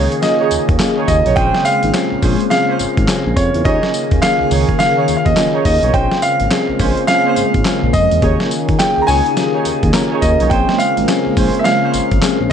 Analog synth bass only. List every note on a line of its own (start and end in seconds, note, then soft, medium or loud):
0.51 0.58 D#2 soft
0.69 0.77 D#2 medium
1.08 1.22 D#2 medium
1.26 1.34 B1 medium
1.37 1.51 A#1 loud
1.83 1.92 G#1 medium
2.12 2.16 A#1 soft
2.23 2.36 A#1 medium
2.80 2.87 G#1 soft
2.98 3.06 G#1 medium
3.26 3.34 A#1 medium
3.37 3.51 F2 medium
3.54 3.63 E2 medium
3.65 3.79 D#2 loud
4.12 4.20 D#2 medium
4.40 4.45 C#2 soft
4.51 4.65 C#2 medium
5.08 5.15 D#2 medium
5.26 5.34 D#2 medium
5.65 5.79 D#2 medium
5.83 5.91 B1 medium
5.94 6.08 A#1 loud
6.40 6.49 G#1 medium
6.69 6.73 A#1 soft
6.80 6.94 A#1 loud
7.37 7.44 G#1 soft
7.54 7.63 G#1 loud
7.83 7.91 A#1 medium
7.94 8.08 F2 medium
8.12 8.20 E2 medium
8.22 8.36 D#2 loud
8.69 8.77 D#2 medium
8.97 9.02 C#2 soft
9.08 9.22 C#2 medium
9.66 9.73 D#2 medium
9.83 9.92 D#2 medium
10.22 10.36 D#2 medium
10.40 10.49 B1 medium
10.51 10.65 A#1 loud
10.97 11.06 G#1 medium
11.26 11.30 A#1 soft
11.37 11.51 A#1 medium
11.94 12.01 G#1 medium
12.12 12.20 G#1 medium
12.40 12.49 A#1 medium